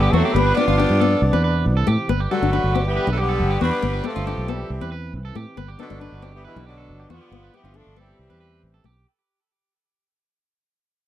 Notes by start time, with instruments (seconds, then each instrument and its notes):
Already playing: tenor saxophone D3, french horn section D3 B3, horn section B3
0.03 clean electric guitar G4
0.11 fingered electric bass E2, tenor saxophone F#3, horn section A3 C4 A4, nylon-string guitar B3, clean electric guitar F#4
0.25 clean electric guitar G4
0.34 fingered electric bass G1, french horn section F3, tenor saxophone G3, horn section B3 D4 B4, nylon-string guitar B3
0.46 clean electric guitar B4
0.54 tenor saxophone B3, nylon-string guitar B3, horn section D4 D5, clean electric guitar G4
0.58 horn section F4
0.68 fingered electric bass G1, nylon-string guitar D4, clean electric guitar F4
0.78 nylon-string guitar D4, clean electric guitar G4
0.90 fingered electric bass G2
1.00 nylon-string guitar B3, clean electric guitar A4
1.22 fingered electric bass C2, french horn section C3 E3
1.33 fingered electric bass E2, nylon-string guitar C4, clean electric guitar B4
1.44 clean electric guitar B4
1.66 fingered electric bass C2
1.77 clean electric guitar A4
1.87 fingered electric bass A2, nylon-string guitar A3, clean electric guitar G4
2.09 fingered electric bass G1, french horn section D3 B4, nylon-string guitar B3, clean electric guitar B4
2.20 clean electric guitar G4
2.31 tenor saxophone D3, horn section F#3 A3 F#4, nylon-string guitar G3, clean electric guitar A4
2.42 fingered electric bass G1, nylon-string guitar D4
2.53 nylon-string guitar D4, clean electric guitar B4
2.64 fingered electric bass G1
2.74 nylon-string guitar C4, clean electric guitar G4
2.86 tenor saxophone E3, horn section G3 B3 G4
2.97 clean electric guitar B4
3.07 fingered electric bass B1, nylon-string guitar D4
3.11 tenor saxophone F#3, horn section A3 A4
3.18 tenor saxophone D3, horn section G3 B3 G4, clean electric guitar G4
3.29 clean electric guitar A4
3.40 fingered electric bass G1
3.50 clean electric guitar G4
3.61 fingered electric bass E2, tenor saxophone G3, nylon-string guitar B3, horn section B3 D4 B4, clean electric guitar F#4
3.72 clean electric guitar G4
3.82 fingered electric bass G1, french horn section F3, nylon-string guitar B3
3.93 clean electric guitar B4
4.04 tenor saxophone F3, horn section A3 C4 A4, nylon-string guitar B3, clean electric guitar G4
4.16 fingered electric bass G1, nylon-string guitar D4, clean electric guitar F4
4.27 nylon-string guitar D4, clean electric guitar G4
4.38 fingered electric bass B1
4.48 tenor saxophone E3, horn section G3 C4 G4, nylon-string guitar B3, clean electric guitar A4
4.70 fingered electric bass C2, french horn section E3 C4
4.81 fingered electric bass E2, nylon-string guitar C4, clean electric guitar B4
4.92 clean electric guitar B4
5.13 fingered electric bass C2
5.25 clean electric guitar A4
5.35 fingered electric bass A2, nylon-string guitar A3, clean electric guitar G4
5.57 fingered electric bass G1, french horn section D3 B3, nylon-string guitar B3, clean electric guitar B4
5.68 clean electric guitar G4
5.79 tenor saxophone B2, horn section D3 F#3 D4, nylon-string guitar B3, clean electric guitar A4
5.90 fingered electric bass G1, nylon-string guitar D4
6.01 nylon-string guitar D4, clean electric guitar B4
6.12 fingered electric bass G1
6.22 nylon-string guitar C4, clean electric guitar G4
6.34 tenor saxophone E3, horn section G3 B3 G4
6.45 tenor saxophone B2, horn section E3 G3 E4, clean electric guitar B4
6.56 fingered electric bass B1, nylon-string guitar D4
6.66 tenor saxophone B2, horn section D3 F#3 D4, clean electric guitar G4
6.78 clean electric guitar A4
6.88 fingered electric bass G1
7.00 clean electric guitar G4
7.10 fingered electric bass E2, tenor saxophone D3, horn section F3 B3 F4, nylon-string guitar B3, clean electric guitar F#4
7.21 clean electric guitar G4
7.31 fingered electric bass G1, french horn section F3, nylon-string guitar B3
7.43 clean electric guitar B4
7.54 tenor saxophone E3, horn section G3 B3 G4, nylon-string guitar B3, clean electric guitar G4
7.64 fingered electric bass G1, nylon-string guitar D4, clean electric guitar F4
7.74 tenor saxophone F3, horn section A3 D4 A4, nylon-string guitar D4, muted clean electric guitar stroke
7.87 fingered electric bass G1
7.96 tenor saxophone E3, horn section G3 C4 G4, nylon-string guitar B3, clean electric guitar A4
8.19 fingered electric bass C2, french horn section E3 C4
8.30 fingered electric bass E2, nylon-string guitar C4, clean electric guitar B4
8.40 clean electric guitar B4
8.63 fingered electric bass A1
8.74 clean electric guitar A4
8.84 fingered electric bass B1, nylon-string guitar A3, clean electric guitar G4